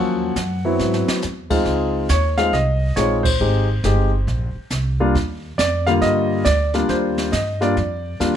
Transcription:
Already playing: D#2 F3 F#3 A#3 C#4 F#5
0.36 F#2, kick, snare, hi-hat pedal
0.65 F#3 B3 C4 E4
0.79 G#2, snare
0.94 snare
1.08 muted upright bass stroke, snare
1.22 E2, snare, hi-hat pedal
1.50 G#3 C4 D#4 F4, kick, crash
1.65 C#2, brush sweep, kick, snare
2.09 D#2 C#5, snare, hi-hat pedal
2.37 G#3 C4 D#4 F4 F5, snare
2.53 C2 D#5, brush sweep, kick, snare
2.96 A#1 G#3 C4 D#4 F4 C#5, kick, snare, hi-hat pedal
3.23 C5, kick, crash
3.40 G#1 G#3 C4 D#4 G4, brush sweep
3.84 G1 G#3 C4 D#4 G4, kick, snare, hi-hat pedal
4.27 A#1, brush sweep, kick, snare
4.55 muted upright bass stroke
4.70 C2, kick, snare, hi-hat pedal
5.00 G3 A#3 D4 F4
5.14 D#2, brush sweep, kick, snare
5.58 F2 D5, kick, snare, hi-hat pedal
5.87 D3 G3 A#3 F4 F5, snare
6.02 G2 D#5, brush sweep, kick, snare
6.45 D2 D5, kick, snare, hi-hat pedal
6.74 G3 A#3 D4 F4, snare
6.89 D#2 C5, brush sweep, kick, snare
7.18 snare
7.32 G2 D#5, kick, snare, hi-hat pedal
7.61 G3 A#3 D4 F4 D5, snare
7.77 F2, brush sweep, kick, snare
8.20 D#2 G3 A#3 D4 F4, snare, hi-hat pedal

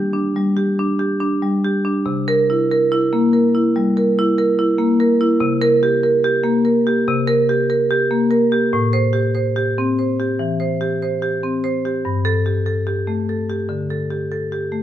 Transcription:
Already playing: D#3 G4
0.13 D4
0.36 G3
0.57 G4
0.79 D4
0.99 G4
1.20 D4
1.42 G3
1.65 G4
1.85 D4
2.06 C3
2.28 A#4
2.50 E4
2.71 A#4
2.92 E4
3.13 A#3
3.33 A#4
3.55 E4
3.76 G3
3.97 A#4
4.19 E4
4.38 A#4
4.59 E4
4.78 A#3
5.00 A#4
5.21 E4
5.40 C3
5.62 A#4
5.83 G4
6.03 A#4
6.24 G4
6.43 A#3
6.65 A#4
6.87 G4
7.08 C3
7.27 A#4
7.49 G4
7.70 A#4
7.91 G4
8.11 A#3
8.31 A#4
8.52 G4
8.73 A2
8.93 C5
9.13 G4
9.35 C5
9.56 G4
9.78 C4
9.99 C5
10.20 G4
10.39 E3
10.60 C5
10.81 G4
11.02 C5
11.22 G4
11.43 C4
11.64 C5
11.85 G4
12.05 G2
12.25 A4
12.46 G4
12.66 A4
12.87 G4
13.07 A3
13.29 A4
13.50 G4
13.69 D3
13.90 A4
14.11 G4
14.32 A4
14.52 G4
14.72 A3

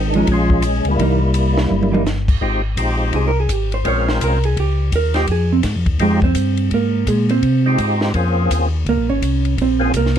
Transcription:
Already playing: G#1 D#3 G#3
0.10 D4, ride
0.15 F3 G#3 C#4 D#4
0.27 A#1, kick, ride
0.32 G#3 C#4 F4
0.50 kick
0.62 hi-hat pedal, ride
0.85 C#2 A#3, ride
0.89 G3 E4
0.99 C2 E3 A#3 D#4, kick, ride
1.34 hi-hat pedal, ride
1.58 snare
1.70 G1, high tom
1.83 high tom
1.92 E3 A#3 D#4, high tom
2.06 snare, hi-hat pedal
2.28 kick, crash
2.41 G#1 G#3 C4 D#4 F4 G4, kick
2.77 A#1 G#3 C4 D#4 F4 G4, kick, hi-hat pedal, ride
3.13 C2 G#4, kick, ride
3.28 A#4
3.40 G#4
3.49 G#1 G4, kick, hi-hat pedal, ride
3.72 C5, ride
3.85 A#1 G#3 C4 C#4 F4 A#4 C#5, kick, ride
4.09 C5, snare
4.21 C2 A#4, kick, hi-hat pedal, ride
4.44 G#4, ride
4.56 C#2 G4, kick, ride
4.92 D#2 A#4, kick, hi-hat pedal, ride
5.14 G#3 C4 D#4 F4 G4, snare, ride
5.27 F2, kick, ride
5.32 G#4
5.52 C4
5.63 G#2, kick, snare, hi-hat pedal, ride
5.76 F2
5.86 D#2, kick, ride
5.99 F2 G#3 C4 D#4 F4 G4 G#4, kick, ride
6.22 C4 C5, kick
6.35 G2, kick, hi-hat pedal, ride
6.57 ride
6.71 G#2 A#3 A#4, kick, ride
7.06 A#2 G#3 G#4, kick, hi-hat pedal, ride
7.29 C4 C5, ride
7.43 C3, kick, ride
7.66 G#3 C4 D#4 F4 G4
7.78 G#2, kick, hi-hat pedal, ride
8.01 snare
8.14 F2 A#3 C4 C#4 F4 G#4, kick, ride
8.50 D#2, kick, hi-hat pedal, ride
8.86 C#2 A#3 A#4, kick, ride
8.97 A#1
9.09 G#1 C#4 C#5
9.22 C2, kick, hi-hat pedal, ride
9.45 ride
9.58 A#1 C4, kick, ride
9.62 C5
9.80 A#3 C4 C#4 F4 G#4
9.94 C2 A#3 A#4, kick, hi-hat pedal, ride
10.06 snare
10.16 ride

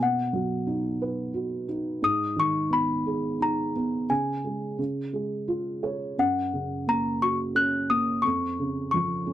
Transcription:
0.00 B2 F#5
0.33 F#3
0.67 D#4
1.02 B4
1.34 F#4
1.68 D#4
2.02 G#2 D#6
2.36 D#3 C#6
2.70 B3 B5
3.06 G#4
3.40 D#4 A#5
3.76 B3
4.09 C#3 G#5
4.44 G#3
4.78 C#3
5.13 G#3
5.48 F4
5.83 C#5
6.18 F#2 F#5
6.53 C#3
6.87 A#3 A#5
7.22 F#4 C#6
7.55 C#4 F#6
7.90 A#3 D#6
8.22 F2 C#6
8.59 C#3
8.91 F3 C#6
9.26 C#4

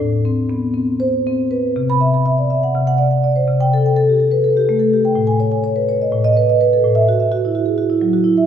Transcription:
0.00 A2
0.25 C4
0.49 B3
0.74 C4
1.00 C5
1.27 C4
1.51 B4
1.76 C3
1.90 B5
2.01 E5
2.14 B5
2.26 E5
2.38 D5
2.50 E5
2.63 F#5
2.75 C3
2.87 F#5
2.98 D5
3.11 F#5
3.24 D5
3.36 C5
3.47 C3
3.61 G5
3.73 A4
3.86 G5
3.96 A4
4.09 G4
4.20 A4
4.31 B4
4.44 A4
4.57 G4
4.69 A3
4.80 A4
4.93 G4
5.05 G5
5.15 A2
5.27 G#5
5.40 C#5
5.52 G#5
5.64 C#5
5.76 B4
5.89 C#5
6.02 D#5
6.12 A2
6.24 D#5
6.37 B4
6.49 D#5
6.61 B4
6.73 A4
6.84 A2
6.95 E5
7.09 F#4
7.20 E5
7.32 F#4
7.45 E4
7.55 F#4
7.66 G#4
7.78 F#4
7.90 E4
8.01 F#3
8.13 F#4
8.24 E4
8.37 E5

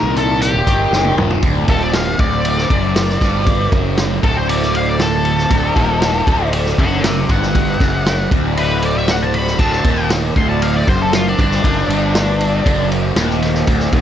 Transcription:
Already playing: D#2 A#2 D#3 A#4
0.03 C2
0.16 A4, closed hi-hat
0.41 G4, closed hi-hat
0.54 D#1
0.67 G1 D#2 A#2 D#3, kick, closed hi-hat
0.91 F#1 D#2 A#2 D#3, snare
1.05 high tom
1.16 D#1, mid tom
1.30 floor tom
1.42 D1 D2, kick, ride
1.68 D#1 D#2 A4, kick, ride
1.83 D5
1.93 F5, snare, ride
2.18 D1 D2 D5, kick, ride
2.45 ride
2.58 snare
2.69 F#1 F#2, kick, ride
2.96 snare, ride
3.09 snare
3.20 G1 G2, kick, snare, ride
3.47 kick, ride
3.71 F#1 F#2, kick, ride
3.98 snare, ride
4.22 D1 D2 A4, kick, ride
4.37 C5
4.49 D5, ride
4.62 snare
4.75 F5, ride
4.89 D5
5.00 A4, snare, ride
5.25 ride
5.38 snare
5.50 D1 D2, kick, ride
5.76 D#1 D#2, kick, ride
6.02 snare, ride
6.27 D1 D2, kick, ride
6.53 ride
6.66 snare
6.78 F#1 F#2 D5 F#5, kick, ride
7.04 C5 E5, snare, ride
7.29 G1 G2 F#5, kick, ride
7.42 snare
7.55 kick, ride
7.80 F#1 F#2, kick, snare, ride
8.06 snare, ride
8.31 D1 D2, kick, ride
8.57 B4, ride
8.82 D5, ride
8.97 E5
9.08 F#5, snare, ride
9.22 A5
9.34 B5, ride
9.47 snare
9.59 D1 D2 A5, kick, crash
9.72 snare
9.84 D#1 D#2, kick, ride
10.10 snare, ride
10.36 D1 D2 C6, kick, ride
10.49 A5
10.62 F5, ride
10.76 D5
10.87 F#1 F#2 C5, kick, ride
11.02 A4
11.13 F4, snare, ride
11.29 D4
11.38 G1 G2 D4, kick, ride
11.52 snare
11.63 F#1 F#2, kick, ride
11.88 G1 G2, ride
12.15 snare, ride
12.41 ride
12.65 F#1 F#2, kick, ride
12.92 ride
13.16 D#1 D#2, snare, ride
13.30 snare
13.42 snare, ride
13.54 snare
13.67 D1 D2, kick, ride
13.80 snare
13.92 D#1 D#2, kick, ride

